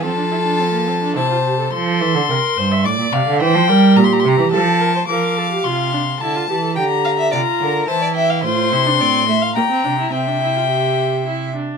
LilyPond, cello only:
\new Staff \with { instrumentName = "Cello" } { \clef bass \time 3/4 \key f \major \tempo 4 = 107 f2 c4 | f8 e16 d16 c8 g,8 a,16 bes,16 c16 d16 | e16 f16 g8 bes,8 c16 e16 f4 | f4 c4 d8 e8 |
d4 c8 d8 e4 | a,8 c8 a,4 bes,8 c8 | c2~ c8 r8 | }